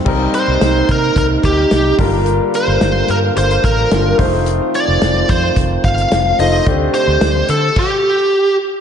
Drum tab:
CC |x---------------|----------------|----------------|--------x-------|
HH |--x-x-x-x-x-x-o-|x-x-x-x-xxx-x-o-|x-x-x-x-x-xxx-o-|x-x-x-x---------|
SD |----o-------o---|----o-------o---|----o-------o---|----o-----------|
BD |o-----o-o-o---o-|----------o---o-|------o-o-o-----|o-------o-------|